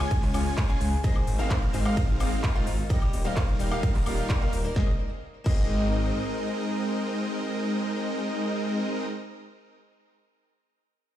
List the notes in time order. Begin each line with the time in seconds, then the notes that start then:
0.00 G#3 C#4 F4 C#5 G#5
0.11 kick, ride, shaker
0.23 C#2, clap, open hi-hat, shaker
0.33 C#2 C#3 G#3 C#4 F4 G#4 C#5 G#5, open hi-hat, high woodblock, shaker
0.46 shaker
0.57 kick, clap, ride, shaker
0.69 C#3 G#3 C#4 F4 G#4 C#5 G#5, shaker
0.81 C#2, open hi-hat, shaker
0.93 shaker
1.03 G#2 G#3 A#3 C4 D#4 G#4 A#4 D#5, kick, ride, shaker
1.16 high woodblock, shaker
1.27 G#1, open hi-hat, shaker
1.38 G#2 G#3 A#3 C4 D#4 A#4 C5 F5, shaker
1.50 kick, clap, ride, shaker
1.62 shaker
1.73 G#1 G#2 A#3 C4 D#4 G#4, open hi-hat, shaker
1.85 G#3 C4 D#4 A#4 F5, high woodblock, shaker
1.97 kick, ride, shaker
2.09 G#1, shaker
2.20 G#1 G#2 G#3 A#3 C4 D#4 F4 A#4 F5, open hi-hat, high woodblock, shaker
2.32 shaker
2.44 kick, clap, ride, shaker
2.55 G#2 G#3 A#3 C4 D#4 F4 A#4 F5, shaker
2.67 G#1, open hi-hat, shaker
2.79 shaker
2.89 G3 A#3 D#4 G4 A#4 D#5, kick, ride, shaker
3.02 high woodblock, shaker
3.13 D#1, open hi-hat, shaker
3.24 G3 A#3 D#4 A#4 C5 F5, shaker
3.37 kick, clap, ride, shaker
3.48 shaker
3.59 D#1 G3 A#3 D#4 G4, open hi-hat, shaker
3.71 G3 A#3 D#4 A#4 F5, high woodblock, shaker
3.83 kick, ride, shaker
3.95 D#1, clap, open hi-hat, shaker
4.06 D#1 G3 A#3 D#4 F4 A#4 F5, open hi-hat, high woodblock, shaker
4.18 shaker
4.29 G3 A#3 D#4 A#4, kick, clap, ride, shaker
4.41 G3 A#3 D#4 A#4 F5, shaker
4.53 D#1, open hi-hat, shaker
4.64 G3 A#3 D#4 A#4, shaker
4.74 G#1 G#3 A#3 C4 D#4 G#4 A#4 D#5, kick, snare
5.44 G#1 G#3 A#3 C4 D#4 G#4 A#4 D#5, kick, crash